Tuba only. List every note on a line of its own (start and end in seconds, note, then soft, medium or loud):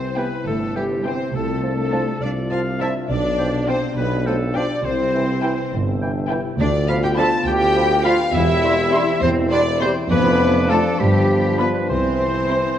0.00 0.29 C2 medium
0.46 1.17 G1 medium
1.35 2.05 C2 medium
2.22 2.93 C2 medium
3.10 3.81 B1 medium
3.97 4.68 B1 medium
4.85 5.56 C2 medium
5.73 6.43 G1 medium
6.60 7.30 D2 medium
7.47 8.17 D2 medium
8.34 9.05 E1 loud
9.23 9.94 E1 loud
10.11 10.82 F1 loud
11.00 11.72 G1 medium
11.90 12.63 C2 medium